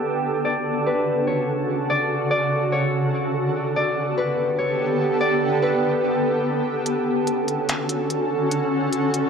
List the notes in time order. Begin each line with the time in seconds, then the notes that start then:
Already playing: D3 B3 G4 A4 B4 D5
0.24 C#3 F#4
0.45 D5
0.86 B4
1.27 C#5
1.90 D5
2.31 D5
2.72 C#5
3.55 D3 B3 G4 A4
3.76 D5
4.18 B4
4.58 C#5
5.21 D5
5.62 B4
6.86 D3 C#4 F#4 A4, closed hi-hat
7.27 closed hi-hat
7.48 closed hi-hat
7.69 finger snap, closed hi-hat
7.89 closed hi-hat
8.10 closed hi-hat
8.52 closed hi-hat
8.93 closed hi-hat
9.14 closed hi-hat